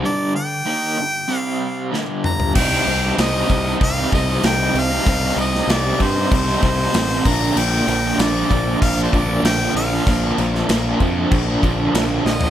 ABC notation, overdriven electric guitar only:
X:1
M:4/4
L:1/16
Q:1/4=96
K:Cdor
V:1 name="Overdriven electric guitar"
[G,,D,G,]2 [G,,D,]2 [E,B,E]2 [G,,D,]2 [C,G,C]4 [G,,D,G,]4 | [C,G,CE]2 [C,G,CE] [G,CE] [C,G,CE]2 [C,G,CE] [G,CE]2 [G,CE] [C,G,CE] [G,CE] [C,G,CE] [G,CE]2 [G,CE] | [C,G,CE]2 [C,G,CE] [G,CE] [C,G,CE]2 [C,G,CE] [G,CE]2 [G,CE] [C,G,CE] [G,CE] [C,G,CE] [G,CE] [B,,D,F,B,D] [F,B,D] | [B,,D,F,B,D]2 [D,F,B,D] [F,B,D] [B,,D,F,B,D]2 [D,F,B,D] [F,B,D]2 [F,B,D] [D,F,B,D] [F,B,D] [B,,D,F,B,D] [F,B,D]2 [F,B,D] |
[B,,D,F,B,D]2 [D,F,B,D] [F,B,D] [B,,D,F,B,D]2 [D,F,B,D] [F,B,D]2 [F,B,D] [D,F,B,D] [F,B,D] [B,,D,F,B,D] [F,B,D]2 [F,B,D] |]